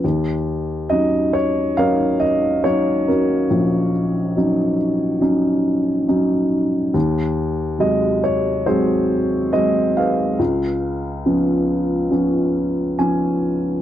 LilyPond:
<<
  \new Staff \with { instrumentName = "Upright piano" } { \time 4/4 \key ees \minor \tempo 4 = 70 << { r4 ees''8 des''8 f''8 ees''8 des''8 bes'8~ | bes'8 r2. r8 | r4 ees''8 des''8 c''4 ees''8 f''8~ | f''2. aes''4 | } \\ { r2 <bes' des''>4. <des' ges'>8~ | <des' ges'>4. r2 r8 | r2 <ges' aes'>4. <aes' ces''>8~ | <aes' ces''>2. r4 | } >> }
  \new Staff \with { instrumentName = "Upright piano" } { \time 4/4 \key ees \minor ees,4 <ges des' ees'>4 <ges des' ees'>4 <ges des' ees'>4 | bes,,4 <ges des' ees'>4 <ges des' ees'>4 <ges des' ees'>4 | ees,4 <c ges aes>4 <ges aes c'>4 <ges aes c'>4 | des,4 <f ces' des'>4 <f ces' des'>4 <f ces' des'>4 | }
>>